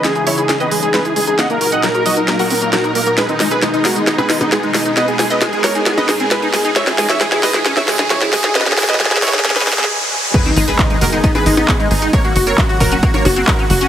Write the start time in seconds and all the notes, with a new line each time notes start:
Already playing: C#3 E3 D#4 G#4, riser
0.04 G#3 G#4, snare, closed hi-hat
0.15 E4 G#4, closed hi-hat
0.27 G#3 E4 C#5, open hi-hat
0.38 E4 G#4, closed hi-hat
0.49 C#4 G#4, snare, closed hi-hat
0.60 C4 B4 D#5, closed hi-hat
0.71 G#3 G#4, open hi-hat
0.83 G#3 G#4, closed hi-hat
0.94 G#3 G#4 B4, snare, closed hi-hat
1.05 E4 G#4, closed hi-hat
1.16 G#3 G#4, open hi-hat
1.27 D#4 G#4, closed hi-hat
1.39 A#2 F#3 A#3 D#4 A#4 D#5 F#5, snare, closed hi-hat
1.50 A#3 A#4, closed hi-hat
1.61 F#4 A#4, open hi-hat
1.72 C4 D#5 F#5, closed hi-hat
1.83 F#3 A#4, snare, closed hi-hat
1.95 F#4 A#4, closed hi-hat
2.06 F#3 F#4 D#5, open hi-hat
2.17 D#4 A#4, closed hi-hat
2.28 A#3 A#4, snare, closed hi-hat
2.39 A#3 F#4 A#4, open hi-hat
2.50 C4 A#4, open hi-hat
2.62 A#3 A#4, closed hi-hat
2.73 F#3 F#4 A#4, snare, closed hi-hat
2.84 D#4 A#4, closed hi-hat
2.95 A#3 A#4, open hi-hat
3.06 A#3 A#4, closed hi-hat
3.18 B2 G#3 D#4 G#4 B4, snare, closed hi-hat
3.29 C4 D#4, closed hi-hat
3.40 G#3 D#4, snare, open hi-hat
3.51 C4 G#4 B4, closed hi-hat
3.62 G#3 D#4, snare, closed hi-hat
3.74 G#3 D#4, closed hi-hat
3.85 G#3 F#4 A#4, snare, open hi-hat
3.96 G#3 D#4, closed hi-hat
4.07 B3 D#4, snare, closed hi-hat
4.18 C4 G#4 B4, closed hi-hat, percussion blips
4.30 G#3 D#4, snare, open hi-hat
4.41 B3 D#4, closed hi-hat, percussion blips
4.52 G#3 B3 G#4, snare, closed hi-hat
4.63 G#3 D#4, closed hi-hat
4.74 G#3 D#4, snare, open hi-hat
4.86 D#4, closed hi-hat
4.97 B3 A#4 B4 D#5, snare, closed hi-hat
5.08 B3 G#4, closed hi-hat
5.19 G#3 G#4, snare, open hi-hat
5.30 C4 B4 D#5, closed hi-hat
5.42 G#3 G#4, snare, closed hi-hat
5.53 G#3 G#4, closed hi-hat
5.64 G#3 A#4 C#5, snare, open hi-hat
5.75 D#4 G#4, closed hi-hat
5.86 B3 G#4, snare, closed hi-hat
5.97 B3 B4 D#5, closed hi-hat, percussion blips
6.09 G#3 G#4, snare, open hi-hat, percussion blips
6.20 C4 G#4, closed hi-hat
6.31 G#3 G#4 B4, snare, closed hi-hat
6.42 D#4 G#4, closed hi-hat
6.54 G#3 G#4, snare, open hi-hat
6.65 D#4 G#4, closed hi-hat
6.76 C#3 E3 G#3 G#4 C#5 E5, snare, closed hi-hat
6.87 C4 G#4, snare, closed hi-hat
6.98 G#3 G#4, snare, open hi-hat
7.09 C4 C#5 E5, snare, closed hi-hat
7.21 G#3 G#4, snare, closed hi-hat
7.32 E4 G#4, snare, closed hi-hat
7.43 G#3 B4 D#5, snare, open hi-hat
7.54 E4 G#4, snare, closed hi-hat
7.65 C#4 G#4, snare, closed hi-hat
7.77 C4 C#5 E5, snare, closed hi-hat, percussion blips
7.88 G#3 G#4, snare, open hi-hat
7.99 G#3 G#4, snare, closed hi-hat, percussion blips
8.10 G#3 E4 C#5, snare, closed hi-hat
8.21 E4 G#4, snare, closed hi-hat
8.33 G#3 G#4, snare, open hi-hat
8.44 D#4 G#4, snare, closed hi-hat
8.55 C#4 B4 D#5, snare, closed hi-hat
8.61 snare
8.66 C#4 G#4, snare, closed hi-hat
8.72 snare
8.77 E4 G#4, snare, open hi-hat
8.83 snare
8.88 C4 B4 D#5, snare, closed hi-hat
8.94 snare
9.00 G#3 G#4, snare, closed hi-hat
9.05 snare
9.11 E4 G#4, snare, closed hi-hat
9.17 snare
9.22 G#3 E4 C#5, snare, open hi-hat
9.28 snare
9.33 D#4 G#4, snare, closed hi-hat
9.39 snare
9.44 C#4 G#4, snare, closed hi-hat
9.50 snare
9.56 C#4 G#4 B4, snare, open hi-hat, percussion blips
9.61 snare
9.67 E4 G#4, snare, open hi-hat, percussion blips
9.73 snare
9.78 C4 G#4, snare, closed hi-hat
9.84 snare
10.34 D#3 G#3 B3 G#4 B4, kick, closed hi-hat, crash, impact
10.45 C4 D#4, closed hi-hat
10.57 G#1 G#3 D#4, open hi-hat
10.68 C4 G#4 B4, closed hi-hat
10.79 G#3 D#4, kick, clap, closed hi-hat
10.90 G#3 D#4, closed hi-hat
11.01 F#1 G#3 F#4 A#4, open hi-hat
11.12 G#3 D#4, closed hi-hat
11.24 B3 D#4, kick, closed hi-hat
11.35 C4 G#4 B4, closed hi-hat, percussion blips
11.46 G#1 G#3 D#4, open hi-hat
11.57 B3 D#4, closed hi-hat, percussion blips
11.68 G#3 B3 G#4, kick, clap, closed hi-hat
11.80 G#3 D#4, closed hi-hat
11.91 G#1 G#3 D#4, open hi-hat
12.02 D#4, closed hi-hat
12.13 C#3 F#3 A#3 F#4 A#4 C#5, kick, closed hi-hat
12.24 A#3 F#4, closed hi-hat
12.36 F#1 F#4, open hi-hat
12.47 C4 A#4 C#5, closed hi-hat
12.58 F#3 F#4, kick, clap, closed hi-hat
12.69 F#4, closed hi-hat
12.80 E1 F#3 F#4 A#4, kick, open hi-hat
12.92 C#4 F#4, closed hi-hat
13.03 A#3 F#4, kick, closed hi-hat
13.14 A#3 A#4 C#5, closed hi-hat, percussion blips
13.25 F#1 F#4, open hi-hat, percussion blips
13.36 C4 F#4, closed hi-hat
13.47 F#3 F#4 A#4, kick, clap, closed hi-hat
13.59 C#4 F#4, closed hi-hat
13.70 F#1 F#3 F#4, open hi-hat
13.81 C#4 F#4, closed hi-hat